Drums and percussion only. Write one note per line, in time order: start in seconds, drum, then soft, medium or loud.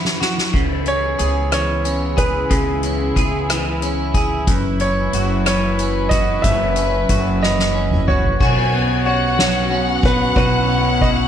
0.05 snare medium
0.21 snare medium
0.38 snare medium
0.54 kick medium
0.54 crash medium
0.86 closed hi-hat soft
1.19 closed hi-hat medium
1.52 cross-stick medium
1.52 closed hi-hat medium
1.85 closed hi-hat soft
2.18 kick medium
2.18 closed hi-hat medium
2.50 kick medium
2.50 closed hi-hat medium
2.83 closed hi-hat soft
3.16 kick medium
3.16 closed hi-hat medium
3.50 cross-stick medium
3.50 closed hi-hat medium
3.82 closed hi-hat soft
4.14 kick medium
4.14 closed hi-hat soft
4.47 kick medium
4.47 closed hi-hat medium
4.80 closed hi-hat soft
5.13 closed hi-hat medium
5.46 cross-stick medium
5.46 closed hi-hat medium
5.79 closed hi-hat soft
6.11 kick medium
6.11 closed hi-hat medium
6.44 kick medium
6.44 closed hi-hat medium
6.76 closed hi-hat soft
7.09 kick medium
7.09 closed hi-hat medium
7.43 snare soft
7.59 snare soft
7.91 mid tom medium
8.08 mid tom medium
8.24 floor tom medium
8.41 kick loud
8.41 crash medium
8.72 ride soft
9.06 ride medium
9.39 snare medium
9.39 ride medium
9.71 ride soft
10.03 kick loud
10.03 ride soft
10.36 kick loud
10.36 ride medium
10.68 ride soft
11.01 kick medium
11.01 ride medium